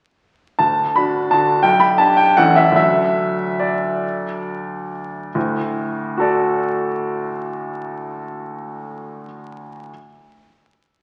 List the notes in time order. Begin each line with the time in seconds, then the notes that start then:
0.59 D2 A5
0.96 D4 F#4 B5
1.31 D3 D4 F#4 A5
1.63 B1 G5
1.80 B5
1.98 D4 G4 A5
2.17 G5
2.37 A1 E3 C#4 A4 F#5
2.56 E5
2.72 D2 F#3 D4 A4
2.76 E5
3.60 D5
5.35 D2 A2
6.17 F#4 A4 D5